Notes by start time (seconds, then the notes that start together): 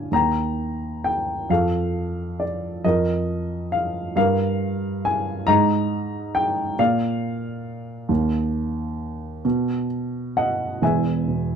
Already playing: A#2 D3 D4 D5 F5 G#5
0.11 D#2 G5 A#5
1.04 G5
1.49 F2 A4 F5
2.40 D5
2.84 F2 A#4 D#5
3.72 F5
4.16 G2 A#4 F5
5.05 G#5
5.47 G#2 D#5 A#5
6.35 G5
6.79 A#2 D5 F5
8.09 D#2
9.45 B2
10.37 D#5 F#5
10.82 E1 E2 E5 G#5
11.28 B2